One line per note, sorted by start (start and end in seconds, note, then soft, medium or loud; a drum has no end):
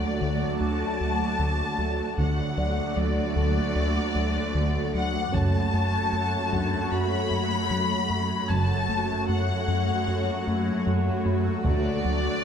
0.00 2.15 D2 soft
0.00 2.14 F#3 medium
0.00 2.14 A3 medium
0.00 2.14 A3 soft
0.00 2.14 F#4 medium
0.00 2.15 F#4 soft
0.00 0.57 D5 medium
0.00 2.16 D5 medium
0.21 0.45 D2 medium
0.21 0.44 D3 medium
0.60 0.84 D2 soft
0.60 0.84 D4 soft
0.60 2.19 A5 medium
1.00 1.24 D2 soft
1.00 1.24 F#3 soft
1.39 1.63 D2 medium
1.39 1.63 D3 medium
1.78 2.02 D2 soft
1.78 2.02 F#3 soft
2.17 2.41 D2 medium
2.17 2.93 D2 soft
2.17 5.30 D2 soft
2.17 2.42 D3 medium
2.17 5.30 F#3 medium
2.17 5.29 A3 medium
2.17 5.30 A3 soft
2.17 5.29 F#4 soft
2.17 5.29 F#4 medium
2.17 5.30 D5 medium
2.17 2.96 F#5 medium
2.57 2.81 D2 medium
2.57 2.81 F#3 soft
2.57 4.91 D5 soft
2.96 3.20 D2 soft
2.96 3.21 F#3 soft
2.96 4.95 D5 medium
3.36 3.60 D2 medium
3.36 3.60 D3 medium
3.75 3.99 D2 soft
3.75 4.00 D4 soft
4.15 4.39 D2 soft
4.15 4.40 F#3 soft
4.54 4.78 D2 medium
4.54 4.79 D3 medium
4.94 5.18 D2 soft
4.94 5.18 F#3 medium
4.94 5.33 F#5 medium
5.32 6.09 F#1 soft
5.32 5.57 F#2 medium
5.32 8.49 F#2 soft
5.32 8.46 F#3 medium
5.32 5.58 F#3 medium
5.32 8.45 A3 medium
5.32 8.45 A3 soft
5.32 7.66 C#4 soft
5.32 8.46 F#4 soft
5.32 8.46 F#4 medium
5.32 7.66 C#5 soft
5.32 8.50 C#5 soft
5.32 6.92 A5 medium
5.32 taiko soft
5.74 5.97 F#2 medium
5.74 5.98 A3 soft
6.13 6.37 F#2 soft
6.13 6.37 A3 medium
6.52 6.76 F#2 medium
6.52 6.76 F#3 medium
6.52 8.86 D4 soft
6.52 8.86 F#5 soft
6.52 taiko soft
6.92 7.15 F#2 soft
6.92 7.16 F#4 soft
6.92 8.50 B5 medium
7.31 7.55 F#2 soft
7.31 7.55 A3 soft
7.70 7.94 F#2 medium
7.70 7.95 F#3 medium
8.10 8.34 F#2 soft
8.10 8.35 A3 medium
8.48 9.25 F#1 medium
8.48 8.73 F#2 medium
8.48 11.62 F#2 soft
8.48 12.44 F#3 medium
8.48 8.74 F#3 medium
8.48 12.44 A3 soft
8.48 12.44 A3 medium
8.48 12.44 F#4 soft
8.48 12.44 F#4 medium
8.48 11.62 C#5 medium
8.48 9.29 A5 medium
8.48 10.82 G#6 soft
8.89 9.13 F#2 medium
8.89 9.13 A3 medium
9.29 9.52 F#2 medium
9.29 9.53 A3 medium
9.29 10.84 F#5 medium
9.68 9.92 F#2 medium
9.68 9.92 F#3 medium
10.07 10.31 F#2 medium
10.07 10.31 F#4 soft
10.07 12.41 F#5 soft
10.47 10.71 F#2 soft
10.47 10.71 A3 soft
10.87 11.10 F#2 medium
10.87 11.10 F#3 medium
11.25 11.49 F#2 soft
11.25 11.49 A3 medium
11.25 12.44 B5 soft
11.65 12.44 D2 soft
11.65 11.89 D2 medium
11.65 12.41 D2 soft
11.65 11.89 D3 medium
11.65 12.44 D5 medium
11.65 taiko medium
12.05 12.29 D2 medium
12.05 12.28 F#3 medium